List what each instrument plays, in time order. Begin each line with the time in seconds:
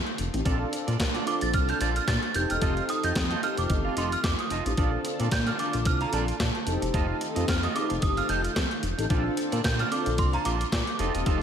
Already playing: string machine D#3 A3 F4
0.06 muted clean electric guitar stroke, closed hi-hat
0.18 analog synth bass F1, closed hi-hat
0.33 analog synth bass A1, analog polysynth A3 C4 D#4 G4, muted clean electric guitar stroke, closed hi-hat
0.45 analog synth bass A#1, string machine D3 A#3 A4, analog polysynth C4 D4 F4 A4, clean electric guitar F4 A4 D5, kick, closed hi-hat
0.60 muted clean electric guitar stroke
0.72 muted clean electric guitar stroke, closed hi-hat
0.87 analog synth bass A#2, clean electric guitar F4 A4 D5, closed hi-hat
0.99 analog synth bass A#2, muted clean electric guitar stroke, kick, snare, clap, closed hi-hat
1.14 clean electric guitar F4 A4 D5, closed hi-hat
1.26 analog polysynth C4 D4 F4 A4, clean electric guitar F4 A4 D5, synth bell D6, closed hi-hat
1.41 analog synth bass A#1, synth bell A6, muted clean electric guitar stroke, closed hi-hat
1.54 analog synth bass C2, synth bell F6, muted clean electric guitar stroke, kick, closed hi-hat
1.68 clean electric guitar F4 A4 F5, synth bell G6, closed hi-hat
1.80 analog synth bass A#1, clean electric guitar F4 A4 D5, synth bell A6, closed hi-hat
1.96 synth bell F6, muted clean electric guitar stroke, closed hi-hat
2.07 analog synth bass A#2, synth bell A6, muted clean electric guitar stroke, kick, snare, clap, closed hi-hat
2.22 muted clean electric guitar stroke, closed hi-hat
2.34 analog synth bass F1, string machine D#3 A3 F4, analog polysynth C4 D#4 G4 A4, synth bell G6, closed hi-hat
2.50 analog synth bass E1, synth bell F6, muted clean electric guitar stroke, closed hi-hat
2.61 analog synth bass F1, clean electric guitar F4 A4 D#5, kick, closed hi-hat
2.77 muted clean electric guitar stroke, closed hi-hat
2.89 synth bell D#6, muted clean electric guitar stroke, closed hi-hat
3.04 analog synth bass F2, clean electric guitar F4 A4 D#5, synth bell G6, closed hi-hat
3.15 analog synth bass F2, muted clean electric guitar stroke, kick, snare, clap, closed hi-hat
3.31 clean electric guitar F4 A4 D#5, closed hi-hat
3.42 analog polysynth C4 D#4 G4 A4, clean electric guitar F4 A4 D#5, synth bell F6, closed hi-hat
3.57 analog synth bass F1, synth bell D6, muted clean electric guitar stroke, closed hi-hat
3.70 analog synth bass G1, muted clean electric guitar stroke, kick, closed hi-hat
3.85 clean electric guitar F4 A4 F5
3.97 analog synth bass F1, clean electric guitar F4 A4 D#5, synth bell C6, closed hi-hat
4.12 synth bell F6, muted clean electric guitar stroke, closed hi-hat
4.24 analog synth bass F2, synth bell D6, kick, snare, clap, closed hi-hat
4.39 synth bell D#6, muted clean electric guitar stroke, closed hi-hat
4.50 analog synth bass F1, clean electric guitar F4 A4 D#5, closed hi-hat
4.66 analog synth bass A1, analog polysynth C4 D#4 G4 A4, muted clean electric guitar stroke, closed hi-hat
4.77 analog synth bass A#1, string machine D3 A#3 A4, analog polysynth C4 D4 F4 A4, clean electric guitar F4 A4 D5, kick, closed hi-hat
4.93 muted clean electric guitar stroke
5.05 muted clean electric guitar stroke, closed hi-hat
5.20 analog synth bass A#2, clean electric guitar F4 A4 D5, closed hi-hat
5.31 analog synth bass A#2, synth bell G6, muted clean electric guitar stroke, kick, snare, clap, closed hi-hat
5.47 clean electric guitar F4 A4 D5, synth bell F6, closed hi-hat
5.58 analog polysynth C4 D4 F4 A4, clean electric guitar F4 A4 D5, synth bell D6, closed hi-hat
5.73 analog synth bass A#1, muted clean electric guitar stroke, closed hi-hat
5.85 analog synth bass C2, synth bell F6, muted clean electric guitar stroke, kick, closed hi-hat
6.01 clean electric guitar F4 A4 F5, synth bell A#5, closed hi-hat
6.13 analog synth bass A#1, clean electric guitar F4 A4 D5, synth bell A5, closed hi-hat
6.28 muted clean electric guitar stroke, closed hi-hat
6.40 analog synth bass A#2, muted clean electric guitar stroke, kick, snare, clap, closed hi-hat
6.55 muted clean electric guitar stroke, closed hi-hat
6.66 analog synth bass F1, string machine D#3 A3 F4, analog polysynth C4 D#4 G4 A4, closed hi-hat
6.82 analog synth bass E1, muted clean electric guitar stroke, closed hi-hat
6.94 analog synth bass F1, clean electric guitar F4 A4 D#5, kick, closed hi-hat
7.09 muted clean electric guitar stroke
7.21 muted clean electric guitar stroke, closed hi-hat
7.36 analog synth bass F2, clean electric guitar F4 A4 D#5, closed hi-hat
7.48 analog synth bass F2, synth bell F6, kick, snare, clap, closed hi-hat
7.63 clean electric guitar F4 A4 D#5, synth bell D#6, closed hi-hat
7.74 analog polysynth C4 D#4 G4 G#4, clean electric guitar F4 A4 D#5, synth bell D6, closed hi-hat
7.82 analog polysynth A4
7.90 analog synth bass F1, muted clean electric guitar stroke, closed hi-hat
8.02 analog synth bass G1, synth bell D#6, muted clean electric guitar stroke, kick, closed hi-hat
8.17 clean electric guitar F4 A4 F5, synth bell F6, closed hi-hat
8.29 analog synth bass F1, clean electric guitar F4 A4 D#5, synth bell G6, closed hi-hat
8.44 muted clean electric guitar stroke, closed hi-hat
8.56 analog synth bass F2, muted clean electric guitar stroke, kick, snare, clap, closed hi-hat
8.71 muted clean electric guitar stroke, closed hi-hat
8.83 analog synth bass F1, closed hi-hat
8.98 analog synth bass A1, analog polysynth C4 D#4 G4 A4, muted clean electric guitar stroke, closed hi-hat
9.09 analog synth bass A#1, string machine D3 A#3 A4, analog polysynth C4 D4 F4 A4, clean electric guitar F4 A4 D5, kick, closed hi-hat
9.25 muted clean electric guitar stroke
9.37 muted clean electric guitar stroke, closed hi-hat
9.52 analog synth bass A#2, clean electric guitar F4 A4 D5, closed hi-hat
9.64 analog synth bass A#2, synth bell G6, kick, snare, clap, closed hi-hat
9.79 clean electric guitar F4 A4 D5, synth bell F6, closed hi-hat
9.91 analog polysynth C4 D4 F4 A4, clean electric guitar F4 A4 D5, synth bell D6, closed hi-hat
10.06 analog synth bass A#1, muted clean electric guitar stroke, closed hi-hat
10.18 analog synth bass C2, synth bell C6, muted clean electric guitar stroke, kick, closed hi-hat
10.33 clean electric guitar F4 A4 F5, synth bell A#5, closed hi-hat
10.45 analog synth bass A#1, clean electric guitar F4 A4 D5, synth bell D6, closed hi-hat
10.60 muted clean electric guitar stroke, closed hi-hat
10.72 analog synth bass A#2, muted clean electric guitar stroke, kick, snare, clap, closed hi-hat
10.87 muted clean electric guitar stroke, closed hi-hat
10.99 analog synth bass F1, string machine D#3 A3 F4, analog polysynth C4 D#4 G4 A4, clean electric guitar F4 A4 D#5, closed hi-hat
11.14 analog synth bass E1, clean electric guitar F4 A4 D#5, closed hi-hat
11.26 analog synth bass F1, clean electric guitar F4 A4 D#5, kick, closed hi-hat